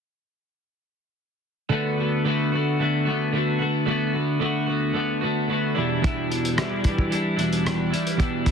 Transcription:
1.69 2.24 D3 medium
1.69 2.00 A3 medium
1.69 1.99 B3 medium
1.69 1.97 F#4 medium
1.97 2.25 A3 soft
1.97 2.26 B3 medium
1.97 2.27 F#4 medium
2.25 2.78 D3 medium
2.25 2.53 A3 medium
2.25 2.53 B3 medium
2.25 2.51 F#4 medium
2.52 2.79 A3 soft
2.52 2.80 B3 medium
2.52 2.81 F#4 medium
2.79 3.07 D3 medium
2.79 3.06 A3 medium
2.79 3.06 B3 medium
2.79 3.04 F#4 medium
3.05 3.31 D3 soft
3.05 3.32 A3 medium
3.05 3.34 B3 medium
3.05 3.34 F#4 medium
3.32 3.84 D3 medium
3.32 3.61 A3 medium
3.32 3.60 B3 medium
3.32 3.58 F#4 medium
3.59 3.86 A3 soft
3.59 3.87 B3 medium
3.59 3.87 F#4 medium
3.86 4.38 D3 medium
3.86 4.14 A3 medium
3.86 4.14 B3 medium
3.86 4.12 F#4 medium
4.13 4.40 A3 soft
4.13 4.41 B3 soft
4.13 4.41 F#4 medium
4.40 4.92 D3 medium
4.40 4.68 A3 medium
4.40 4.68 B3 medium
4.40 4.65 F#4 medium
4.66 4.93 A3 soft
4.66 4.95 B3 medium
4.66 4.95 F#4 medium
4.93 5.23 D3 medium
4.93 5.22 A3 medium
4.93 5.22 B3 medium
4.93 5.20 F#4 medium
5.21 5.47 D3 medium
5.21 5.48 A3 medium
5.21 5.49 B3 medium
5.21 5.50 F#4 medium
5.48 5.74 D3 medium
5.48 5.75 A3 medium
5.48 5.75 B3 medium
5.48 5.74 F#4 medium
5.75 6.01 E2 medium
5.75 6.01 B2 medium
5.75 6.03 E3 medium
5.75 6.03 G3 medium
5.75 6.03 D4 medium
5.75 6.04 E4 medium
6.02 6.56 E2 medium
6.02 6.56 B2 medium
6.02 6.31 E3 medium
6.02 6.30 G3 medium
6.02 6.29 D4 medium
6.02 6.28 E4 medium
6.02 kick medium
6.02 closed hi-hat soft
6.29 6.57 E3 soft
6.29 6.57 G3 soft
6.29 6.58 D4 medium
6.29 6.59 E4 medium
6.29 closed hi-hat medium
6.45 closed hi-hat medium
6.56 7.15 E2 medium
6.56 7.11 B2 medium
6.56 6.86 E3 medium
6.56 6.85 G3 medium
6.56 6.84 D4 medium
6.56 6.83 E4 medium
6.56 cross-stick loud
6.56 closed hi-hat medium
6.84 7.09 E3 medium
6.84 7.10 G3 soft
6.84 7.11 D4 medium
6.84 7.12 E4 medium
6.84 kick medium
6.84 closed hi-hat medium
6.98 kick medium
7.10 7.37 E3 medium
7.10 7.37 G3 medium
7.10 7.36 D4 medium
7.10 7.35 E4 medium
7.10 closed hi-hat medium
7.36 7.93 E2 medium
7.36 7.92 B2 medium
7.36 7.63 E3 medium
7.36 7.64 G3 medium
7.36 7.65 D4 medium
7.36 7.67 E4 medium
7.36 closed hi-hat medium
7.53 closed hi-hat soft
7.64 7.92 E3 medium
7.64 7.91 G3 medium
7.64 7.91 D4 medium
7.64 7.89 E4 medium
7.64 cross-stick medium
7.64 closed hi-hat medium
7.90 8.17 E3 medium
7.90 8.18 G3 medium
7.90 8.18 D4 medium
7.90 8.19 E4 medium
7.90 closed hi-hat medium
8.07 closed hi-hat medium
8.17 8.51 E2 medium
8.17 8.51 B2 medium
8.17 8.46 E3 medium
8.17 8.45 G3 medium
8.17 8.44 D4 medium
8.17 8.43 E4 medium
8.17 kick medium
8.17 closed hi-hat medium
8.44 8.51 E3 soft
8.44 8.51 G3 medium
8.44 8.51 D4 soft
8.44 8.51 E4 medium
8.44 kick medium
8.44 closed hi-hat medium

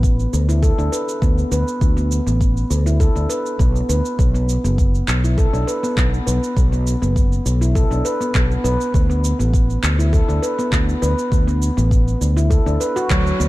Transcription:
0.00 0.26 A1 medium
0.00 kick loud
0.04 cabasa soft
0.20 cabasa soft
0.33 0.70 D2 medium
0.33 cabasa medium
0.49 0.61 E4 medium
0.49 cabasa soft
0.63 0.77 A4 medium
0.63 kick medium
0.63 cabasa soft
0.78 0.88 D2 medium
0.78 0.91 D4 medium
0.78 cabasa soft
0.92 1.01 B4 medium
0.92 cabasa medium
1.09 cabasa soft
1.22 1.43 D2 medium
1.22 1.50 B3 medium
1.22 kick loud
1.22 cabasa soft
1.38 cabasa soft
1.51 1.62 D2 medium
1.51 1.96 B4 medium
1.51 cabasa medium
1.68 cabasa soft
1.81 2.19 D2 medium
1.81 kick medium
1.81 cabasa soft
1.97 2.25 B3 medium
1.97 cabasa soft
2.12 cabasa medium
2.27 2.63 A1 medium
2.27 2.40 B3 medium
2.27 cabasa soft
2.41 kick medium
2.41 cabasa soft
2.57 cabasa soft
2.70 3.08 D2 medium
2.70 cabasa medium
2.86 2.99 E4 medium
2.86 cabasa soft
3.00 3.14 A4 medium
3.00 kick medium
3.00 cabasa soft
3.16 3.25 D2 medium
3.16 3.28 D4 medium
3.16 cabasa soft
3.30 3.39 B4 medium
3.30 cabasa medium
3.46 cabasa soft
3.59 3.80 B1 medium
3.59 3.88 B3 medium
3.59 kick medium
3.59 cabasa soft
3.76 cabasa soft
3.89 4.00 D2 medium
3.89 4.19 B4 medium
3.89 cabasa medium
4.06 cabasa soft
4.19 4.56 B1 medium
4.19 kick loud
4.19 cabasa soft
4.34 4.63 B3 medium
4.34 cabasa soft
4.49 cabasa medium
4.64 5.01 F#1 medium
4.64 4.78 B3 medium
4.64 cabasa soft
4.78 kick loud
4.78 cabasa soft
4.95 cabasa soft
5.08 5.45 B1 medium
5.08 clap medium
5.08 cabasa medium
5.24 5.36 E4 medium
5.24 cabasa soft
5.38 5.52 A4 medium
5.38 kick medium
5.38 cabasa soft
5.53 5.63 B1 medium
5.53 5.66 D4 medium
5.53 cabasa soft
5.67 5.76 B4 medium
5.67 cabasa medium
5.83 5.91 B3 medium
5.83 cabasa soft
5.97 6.18 B1 medium
5.97 6.25 B3 medium
5.97 kick loud
5.97 clap medium
5.97 cabasa soft
6.14 cabasa soft
6.27 6.38 B1 medium
6.27 6.71 B4 medium
6.27 cabasa medium
6.44 cabasa soft
6.57 6.94 B1 medium
6.57 kick medium
6.57 cabasa soft
6.72 7.00 B3 medium
6.72 cabasa soft
6.87 cabasa medium
7.02 7.38 F#1 medium
7.02 7.15 B3 medium
7.02 cabasa soft
7.16 kick medium
7.16 cabasa soft
7.33 cabasa soft
7.46 7.83 B1 medium
7.46 cabasa medium
7.61 7.74 E4 medium
7.61 cabasa soft
7.75 7.90 A4 medium
7.75 kick medium
7.75 cabasa soft
7.91 8.01 B1 medium
7.91 8.04 D4 medium
7.91 cabasa soft
8.05 8.14 B4 medium
8.05 cabasa medium
8.20 8.29 B3 medium
8.20 cabasa soft
8.34 8.55 B1 medium
8.34 8.63 B3 medium
8.34 kick loud
8.34 clap medium
8.34 cabasa soft
8.51 cabasa soft
8.64 8.75 B1 medium
8.64 8.94 B4 medium
8.64 cabasa medium
8.81 cabasa soft
8.94 9.31 D2 medium
8.94 kick medium
8.94 cabasa soft
9.10 9.38 B3 medium
9.10 cabasa soft
9.24 cabasa medium
9.39 9.76 A1 medium
9.39 9.53 B3 medium
9.39 cabasa soft
9.53 kick medium
9.53 cabasa soft
9.70 cabasa soft
9.83 10.21 D2 medium
9.83 clap medium
9.83 cabasa medium
9.99 10.11 E4 medium
9.99 cabasa soft
10.13 10.27 A4 medium
10.13 kick medium
10.13 cabasa soft
10.28 10.38 D2 medium
10.28 10.41 D4 medium
10.28 cabasa soft
10.42 10.52 B4 medium
10.42 cabasa medium
10.58 10.66 B3 medium
10.58 cabasa soft
10.72 10.93 D2 medium
10.72 kick medium
10.72 clap medium
10.72 cabasa soft
10.89 cabasa soft
11.02 11.13 D2 medium
11.02 11.46 B4 medium
11.02 cabasa medium
11.19 cabasa soft
11.32 11.69 D2 medium
11.32 kick medium
11.32 cabasa soft
11.47 11.76 B3 medium
11.47 cabasa soft
11.62 cabasa medium
11.77 12.14 A1 medium
11.77 11.90 B3 medium
11.77 cabasa soft
11.91 kick medium
11.91 cabasa soft
12.08 cabasa soft
12.21 12.58 D2 medium
12.21 cabasa medium
12.37 12.49 E4 medium
12.37 cabasa soft
12.50 12.65 A4 medium
12.50 kick medium
12.50 cabasa soft
12.66 12.76 D2 medium
12.66 12.79 D4 medium
12.66 cabasa soft
12.80 12.95 B4 medium
12.80 cabasa medium
12.96 13.09 F#4 medium
12.96 cabasa soft
13.10 13.31 D2 medium
13.10 13.24 F#3 loud
13.10 kick loud
13.10 clap medium
13.10 cabasa soft
13.27 cabasa soft
13.40 13.48 D2 medium
13.40 13.48 B3 medium
13.40 cabasa medium

